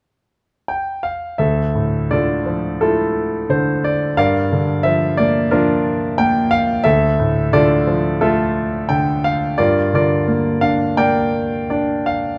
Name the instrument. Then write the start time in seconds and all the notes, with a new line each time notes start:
grand piano
0.68 G5
1.03 F5
1.38 D2 A4 E5
1.75 A2
2.11 D3 F4 A4 D5
2.46 F3
2.81 A3 E4 F4 A4
3.49 D3 C5
3.84 D5
4.17 G2 A#4 D5 F5
4.52 D3
4.83 F3 E5
5.17 A#3 D5
5.51 F3 D4 F4 A#4
6.18 A#3 G5
6.51 F5
6.84 D2 A4 E5
7.20 A2
7.53 D3 F4 A4 D5
7.87 F3
8.21 A3 F4 A4 E5
8.89 D3 G5
9.24 F5
9.58 G2 F4 A#4 D5
9.94 D3 F4 A#4 D5
10.28 A#3
10.61 D4 F5
10.97 A#3 A#4 D5 G5
11.70 D4 D5
12.06 F5